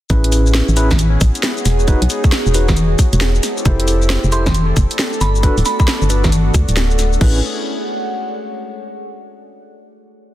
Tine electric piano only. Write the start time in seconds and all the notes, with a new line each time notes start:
0.10 C#4 E4 G#4 B4
0.77 C#4 E4 G#4 B4
1.88 D#4 F#4 G#4 B4
2.54 D#4 F#4 G#4 B4
3.65 E4 G4 A4 C5
4.32 E4 G4 A4 C5
5.43 D4 F#4 A4 B4
6.10 D4 F#4 A4 B4
7.21 C#4 E4 G#4 B4